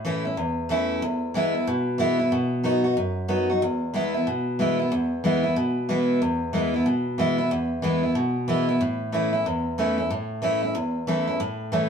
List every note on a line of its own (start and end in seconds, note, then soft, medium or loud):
0.00 0.35 A2 medium
0.05 0.24 E3 medium
0.05 0.25 A3 medium
0.05 0.25 C#4 medium
0.05 0.24 E4 loud
0.25 0.38 C#4 medium
0.25 0.37 E4 medium
0.37 1.00 E2 medium
0.69 1.01 E3 medium
0.69 1.01 A3 medium
0.69 1.02 C#4 loud
0.69 1.02 E4 medium
1.02 1.65 E2 medium
1.34 1.54 E3 medium
1.34 1.55 G#3 loud
1.34 1.55 B3 medium
1.34 1.53 E4 loud
1.55 1.68 B3 soft
1.55 1.67 E4 medium
1.67 2.30 B2 medium
1.98 2.19 E3 medium
1.98 2.19 G#3 medium
1.98 2.19 B3 medium
1.98 2.18 E4 loud
2.19 2.32 B3 medium
2.19 2.31 E4 medium
2.32 2.95 B2 loud
2.63 2.84 F#3 medium
2.63 2.84 B3 medium
2.63 2.84 D#4 medium
2.63 2.83 F#4 loud
2.84 2.97 D#4 soft
2.84 2.96 F#4 medium
2.97 3.60 F#2 medium
3.28 3.49 F#3 medium
3.28 3.49 B3 medium
3.28 3.49 D#4 medium
3.28 3.48 F#4 medium
3.50 3.62 D#4 soft
3.50 3.61 F#4 medium
3.62 4.25 E2 medium
3.93 4.14 E3 medium
3.93 4.14 G#3 medium
3.93 4.14 B3 medium
3.93 4.13 E4 loud
4.14 4.28 B3 soft
4.14 4.26 E4 medium
4.27 4.90 B2 medium
4.59 4.79 E3 medium
4.59 4.79 G#3 medium
4.59 4.79 B3 medium
4.59 4.78 E4 medium
4.79 4.92 B3 medium
4.79 4.91 E4 medium
4.92 5.54 E2 medium
5.24 5.44 E3 medium
5.24 5.44 G#3 medium
5.24 5.44 B3 loud
5.24 5.42 E4 medium
5.43 5.57 B3 soft
5.43 5.56 E4 medium
5.56 6.19 B2 medium
5.89 6.20 E3 medium
5.89 6.21 G#3 medium
5.89 6.21 B3 medium
5.89 6.21 E4 medium
6.22 6.84 E2 medium
6.53 6.73 E3 medium
6.53 6.74 G#3 medium
6.53 6.74 B3 medium
6.53 6.73 E4 medium
6.74 6.87 B3 medium
6.74 6.86 E4 medium
6.86 7.49 B2 medium
7.18 7.38 E3 medium
7.18 7.39 G#3 medium
7.18 7.39 B3 medium
7.18 7.37 E4 medium
7.38 7.52 B3 medium
7.38 7.50 E4 medium
7.51 8.14 E2 medium
7.82 8.03 E3 medium
7.82 8.03 G#3 medium
7.82 8.03 B3 medium
7.82 8.02 E4 medium
8.03 8.16 B3 soft
8.03 8.15 E4 medium
8.15 8.78 B2 medium
8.48 8.68 E3 medium
8.48 8.68 G#3 medium
8.48 8.69 B3 medium
8.48 8.67 E4 medium
8.68 8.81 B3 medium
8.68 8.80 E4 medium
8.81 9.43 A2 medium
9.12 9.33 E3 medium
9.12 9.33 A3 medium
9.12 9.33 C#4 medium
9.12 9.31 E4 medium
9.33 9.46 C#4 medium
9.33 9.45 E4 medium
9.46 10.08 E2 medium
9.78 9.98 E3 medium
9.78 9.98 A3 medium
9.78 9.98 C#4 medium
9.78 9.97 E4 medium
9.98 10.11 C#4 medium
9.98 10.10 E4 medium
10.10 10.73 A2 medium
10.42 10.62 E3 medium
10.42 10.62 A3 medium
10.42 10.63 C#4 medium
10.42 10.61 E4 medium
10.62 10.76 C#4 soft
10.62 10.75 E4 medium
10.75 11.38 E2 medium
11.07 11.27 E3 medium
11.07 11.28 A3 medium
11.07 11.28 C#4 medium
11.07 11.26 E4 loud
11.27 11.41 C#4 medium
11.27 11.39 E4 medium
11.40 11.89 A2 medium
11.72 11.89 E3 medium
11.72 11.89 A3 medium
11.72 11.89 C#4 medium
11.72 11.89 E4 medium